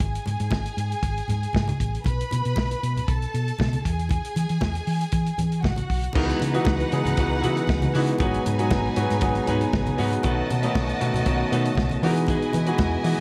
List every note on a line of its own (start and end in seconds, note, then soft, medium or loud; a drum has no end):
0.00 0.17 G#1 medium
0.00 2.01 G#4 medium
0.00 2.01 G#5 medium
0.00 kick loud
0.00 closed hi-hat medium
0.00 muted conga medium
0.15 closed hi-hat soft
0.26 0.35 G#2 medium
0.26 closed hi-hat medium
0.26 muted conga soft
0.40 0.48 G#2 medium
0.40 closed hi-hat soft
0.51 0.68 G#1 medium
0.51 kick medium
0.51 snare loud
0.51 high conga medium
0.66 closed hi-hat soft
0.77 0.93 G#2 loud
0.77 closed hi-hat medium
0.92 closed hi-hat soft
1.03 1.19 G#1 loud
1.03 kick medium
1.03 closed hi-hat medium
1.03 muted conga soft
1.18 closed hi-hat soft
1.28 1.45 G#2 medium
1.28 closed hi-hat medium
1.28 low conga medium
1.43 closed hi-hat soft
1.53 1.71 G#2 loud
1.53 kick medium
1.53 snare loud
1.53 high conga medium
1.68 closed hi-hat soft
1.68 high conga medium
1.80 1.97 A1 medium
1.80 kick medium
1.80 closed hi-hat medium
1.95 closed hi-hat soft
2.04 2.22 B1 medium
2.04 3.06 B4 medium
2.04 3.07 B5 medium
2.04 kick medium
2.04 closed hi-hat medium
2.04 muted conga medium
2.21 closed hi-hat soft
2.31 2.41 B2 medium
2.31 closed hi-hat medium
2.31 muted conga medium
2.45 2.53 B2 medium
2.45 closed hi-hat soft
2.56 2.73 B1 medium
2.56 kick medium
2.56 snare loud
2.56 high conga medium
2.71 closed hi-hat soft
2.83 2.99 B2 loud
2.83 closed hi-hat medium
2.96 closed hi-hat soft
2.96 low conga medium
3.08 3.25 B1 medium
3.08 3.83 A4 medium
3.08 3.84 A5 medium
3.08 kick loud
3.08 closed hi-hat medium
3.08 muted conga soft
3.22 closed hi-hat soft
3.34 3.51 B2 medium
3.34 closed hi-hat medium
3.48 closed hi-hat soft
3.59 3.76 B2 medium
3.59 kick medium
3.59 snare medium
3.59 high conga medium
3.73 closed hi-hat soft
3.73 high conga medium
3.85 4.18 E2 medium
3.85 5.61 G#4 medium
3.85 5.61 G#5 medium
3.85 kick medium
3.85 closed hi-hat medium
3.99 closed hi-hat soft
4.09 kick loud
4.09 closed hi-hat medium
4.09 muted conga medium
4.25 closed hi-hat soft
4.36 4.45 E3 medium
4.36 closed hi-hat medium
4.36 muted conga soft
4.49 4.58 E3 medium
4.49 closed hi-hat soft
4.61 4.78 E2 medium
4.61 kick loud
4.61 snare loud
4.61 high conga medium
4.75 closed hi-hat soft
4.87 5.04 E3 loud
4.87 open hi-hat medium
5.01 closed hi-hat soft
5.12 5.29 E3 loud
5.12 kick medium
5.12 closed hi-hat medium
5.12 muted conga soft
5.26 closed hi-hat soft
5.38 5.66 E3 medium
5.38 closed hi-hat medium
5.38 low conga medium
5.52 closed hi-hat soft
5.63 5.81 A1 medium
5.63 6.14 F#4 medium
5.63 6.14 F#5 medium
5.63 kick medium
5.63 snare medium
5.63 high conga medium
5.76 closed hi-hat soft
5.76 high conga medium
5.90 6.07 B1 medium
5.90 kick medium
5.90 open hi-hat medium
6.04 closed hi-hat soft
6.13 6.32 C#2 loud
6.13 6.39 E3 medium
6.13 8.18 E3 medium
6.13 6.40 G#3 medium
6.13 13.20 B3 medium
6.13 6.40 B3 medium
6.13 8.17 D#4 medium
6.13 8.16 D#4 medium
6.13 6.40 D#4 medium
6.13 6.39 E4 medium
6.13 11.98 F#4 medium
6.13 6.39 F#4 medium
6.13 6.40 F#4 medium
6.13 8.15 B4 medium
6.13 8.16 F#5 loud
6.13 kick loud
6.13 crash loud
6.13 muted conga medium
6.17 6.40 B4 medium
6.30 closed hi-hat soft
6.40 6.58 C#3 loud
6.40 muted clean electric guitar stroke soft
6.40 closed hi-hat medium
6.40 muted conga medium
6.54 6.78 E3 loud
6.54 6.79 G#3 medium
6.54 6.79 B3 medium
6.54 6.79 D#4 medium
6.54 6.65 E4 soft
6.54 6.66 F#4 medium
6.54 6.79 F#4 loud
6.54 6.66 B4 medium
6.54 closed hi-hat soft
6.65 6.83 C#2 loud
6.65 muted clean electric guitar stroke soft
6.65 kick loud
6.65 snare loud
6.65 high conga medium
6.79 muted clean electric guitar stroke soft
6.79 closed hi-hat soft
6.92 7.01 C#3 loud
6.92 7.09 E3 medium
6.92 7.09 G#3 medium
6.92 7.09 B3 medium
6.92 7.09 D#4 medium
6.92 7.09 G#4 medium
6.92 closed hi-hat medium
7.05 7.14 C#3 loud
7.05 muted clean electric guitar stroke medium
7.05 closed hi-hat soft
7.05 low conga medium
7.17 7.45 C#2 loud
7.17 7.35 E3 medium
7.17 7.35 G#3 medium
7.17 7.35 B3 medium
7.17 7.35 D#4 medium
7.17 7.36 F#4 loud
7.17 muted clean electric guitar stroke soft
7.17 kick loud
7.17 closed hi-hat medium
7.31 muted clean electric guitar stroke soft
7.42 7.60 C#3 medium
7.42 7.76 E3 medium
7.42 7.76 G#3 medium
7.42 7.76 B3 medium
7.42 7.76 D#4 medium
7.42 7.63 E4 medium
7.42 7.57 F#4 medium
7.42 7.77 F#4 medium
7.42 7.55 B4 loud
7.42 closed hi-hat medium
7.56 muted clean electric guitar stroke soft
7.56 closed hi-hat soft
7.67 7.85 C#2 loud
7.67 muted clean electric guitar stroke soft
7.67 kick loud
7.67 snare loud
7.67 high conga medium
7.82 muted clean electric guitar stroke medium
7.82 closed hi-hat soft
7.82 high conga medium
7.94 8.11 C#3 loud
7.94 8.11 E3 medium
7.94 8.11 G#3 medium
7.94 8.12 B3 medium
7.94 8.12 D#4 medium
7.94 8.14 E4 medium
7.94 8.08 F#4 medium
7.94 8.12 F#4 loud
7.94 8.06 B4 loud
7.94 open hi-hat medium
8.07 muted clean electric guitar stroke medium
8.07 closed hi-hat soft
8.18 8.37 G#1 loud
8.18 13.20 B2 medium
8.18 8.44 F#3 medium
8.18 10.22 G#3 medium
8.18 8.45 G#3 medium
8.18 8.45 B3 medium
8.18 8.43 D#4 medium
8.18 10.20 D#4 loud
8.18 8.45 D#4 medium
8.18 8.44 F#4 medium
8.18 8.45 F#4 loud
8.18 10.20 B4 loud
8.18 8.44 B4 loud
8.18 10.20 G#5 loud
8.18 kick loud
8.18 closed hi-hat medium
8.18 muted conga medium
8.34 closed hi-hat soft
8.45 8.73 G#2 medium
8.45 muted clean electric guitar stroke soft
8.45 closed hi-hat medium
8.45 muted conga medium
8.58 8.83 F#3 medium
8.58 8.83 G#3 medium
8.58 8.83 B3 medium
8.58 8.83 D#4 medium
8.58 8.70 D#4 medium
8.58 8.71 F#4 medium
8.58 8.84 F#4 loud
8.58 8.71 B4 medium
8.58 closed hi-hat medium
8.71 8.88 G#1 medium
8.71 kick loud
8.71 snare loud
8.71 high conga medium
8.85 muted clean electric guitar stroke soft
8.96 9.05 G#2 loud
8.96 9.13 F#3 medium
8.96 9.13 G#3 medium
8.96 9.13 B3 medium
8.96 9.13 D#4 medium
8.96 9.13 F#4 loud
8.96 closed hi-hat medium
9.10 9.23 G#2 loud
9.10 muted clean electric guitar stroke medium
9.10 snare soft
9.10 closed hi-hat soft
9.21 9.38 G#1 loud
9.21 9.38 F#3 medium
9.21 9.38 G#3 medium
9.21 9.38 B3 medium
9.21 9.39 D#4 medium
9.21 9.39 F#4 loud
9.21 kick loud
9.21 closed hi-hat medium
9.21 muted conga soft
9.35 muted clean electric guitar stroke medium
9.35 closed hi-hat soft
9.46 9.64 G#2 medium
9.46 9.79 F#3 medium
9.46 9.80 G#3 medium
9.46 9.80 B3 medium
9.46 9.80 D#4 medium
9.46 9.68 D#4 medium
9.46 9.62 F#4 medium
9.46 9.80 G#4 medium
9.46 closed hi-hat medium
9.46 low conga medium
9.50 9.61 B4 medium
9.61 muted clean electric guitar stroke soft
9.61 closed hi-hat soft
9.73 9.90 G#1 loud
9.73 muted clean electric guitar stroke soft
9.73 kick loud
9.73 snare loud
9.73 high conga medium
9.87 muted clean electric guitar stroke soft
9.87 closed hi-hat soft
9.87 high conga medium
9.97 10.15 G#2 loud
9.97 10.14 F#3 medium
9.97 10.15 G#3 medium
9.97 10.15 B3 medium
9.97 10.15 D#4 medium
9.97 10.18 D#4 medium
9.97 10.15 F#4 loud
9.97 10.13 F#4 loud
9.97 10.11 B4 loud
9.97 open hi-hat medium
10.12 muted clean electric guitar stroke soft
10.12 closed hi-hat soft
10.22 10.41 B1 loud
10.22 10.47 D#3 medium
10.22 10.48 A3 medium
10.22 12.01 A3 medium
10.22 10.48 B3 medium
10.22 10.48 C#4 medium
10.22 10.48 D#4 medium
10.22 10.48 F#4 loud
10.22 11.99 F#4 loud
10.22 10.48 A4 medium
10.22 10.49 B4 loud
10.22 11.99 D#5 medium
10.22 11.99 A5 loud
10.22 kick loud
10.22 closed hi-hat medium
10.22 muted conga medium
10.50 10.66 B2 medium
10.50 muted clean electric guitar stroke soft
10.50 closed hi-hat medium
10.50 muted conga medium
10.62 10.87 D#3 medium
10.62 10.87 A3 medium
10.62 10.87 B3 medium
10.62 10.87 C#4 medium
10.62 10.74 D#4 medium
10.62 10.88 D#4 loud
10.62 10.74 A4 medium
10.62 10.75 B4 medium
10.62 closed hi-hat soft
10.75 10.92 B1 loud
10.75 muted clean electric guitar stroke medium
10.75 kick loud
10.75 snare loud
10.75 high conga medium
10.89 muted clean electric guitar stroke soft
10.89 closed hi-hat soft
11.00 11.10 B2 loud
11.00 11.16 D#3 medium
11.00 11.17 A3 medium
11.00 11.17 B3 medium
11.00 11.17 C#4 medium
11.00 11.17 F#4 medium
11.00 closed hi-hat medium
11.14 11.22 B2 loud
11.14 muted clean electric guitar stroke medium
11.14 closed hi-hat medium
11.14 low conga medium
11.25 11.42 B1 loud
11.25 11.42 D#3 medium
11.25 11.42 A3 medium
11.25 11.43 B3 medium
11.25 11.43 C#4 medium
11.25 11.43 F#4 loud
11.25 muted clean electric guitar stroke soft
11.25 kick loud
11.25 closed hi-hat medium
11.25 muted conga soft
11.40 muted clean electric guitar stroke medium
11.51 11.68 B2 loud
11.51 11.83 D#3 medium
11.51 11.84 A3 medium
11.51 11.84 B3 medium
11.51 11.84 C#4 medium
11.51 11.71 D#4 medium
11.51 11.84 F#4 medium
11.51 11.65 A4 loud
11.51 11.64 B4 loud
11.51 closed hi-hat medium
11.65 muted clean electric guitar stroke soft
11.65 closed hi-hat soft
11.75 11.94 B1 loud
11.75 muted clean electric guitar stroke medium
11.75 kick loud
11.75 snare loud
11.75 high conga medium
11.90 muted clean electric guitar stroke soft
11.90 closed hi-hat soft
11.90 high conga medium
12.03 12.35 E3 loud
12.03 12.53 E3 medium
12.03 13.20 E3 medium
12.03 12.53 G#3 medium
12.03 13.20 G#3 medium
12.03 12.54 B3 medium
12.03 12.23 D#4 medium
12.03 12.54 D#4 loud
12.03 13.20 E4 medium
12.03 12.54 F#4 loud
12.03 12.17 G#4 medium
12.03 12.15 B4 medium
12.03 13.20 D#5 medium
12.03 13.20 G#5 loud
12.03 open hi-hat medium
12.17 muted clean electric guitar stroke medium
12.17 closed hi-hat soft
12.27 12.52 D#4 medium
12.27 12.52 G#4 medium
12.27 kick loud
12.27 closed hi-hat medium
12.27 muted conga medium
12.31 12.53 B4 medium
12.42 closed hi-hat soft
12.53 12.70 E3 loud
12.53 muted clean electric guitar stroke soft
12.53 closed hi-hat medium
12.53 muted conga medium
12.66 12.90 E3 medium
12.66 12.91 G#3 medium
12.66 12.91 B3 medium
12.66 12.91 D#4 medium
12.66 12.78 D#4 soft
12.66 12.91 F#4 loud
12.66 12.79 G#4 medium
12.66 12.80 B4 medium
12.66 closed hi-hat soft
12.78 12.95 E2 medium
12.78 muted clean electric guitar stroke soft
12.78 kick loud
12.78 snare loud
12.78 high conga medium
12.92 muted clean electric guitar stroke medium
13.03 13.20 E3 medium
13.03 13.13 E3 loud
13.03 13.20 G#3 medium
13.03 13.20 B3 medium
13.03 13.20 D#4 medium
13.03 13.20 F#4 medium
13.03 open hi-hat medium